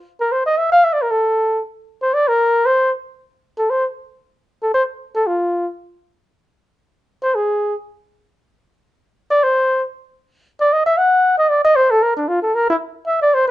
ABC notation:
X:1
M:4/4
L:1/8
Q:"Swing" 1/4=231
K:Cdor
V:1 name="Flugelhorn"
z B c e =e f (3e d B | A4 z3 c | d B3 c2 z2 | z3 A c z3 |
z3 A c z2 A | F3 z4 z | z6 z c | _A3 z4 z |
z6 z d | c3 z4 z | z d e =e _g3 _e | d e c A B D F A |
B =E z2 =e d c =B |]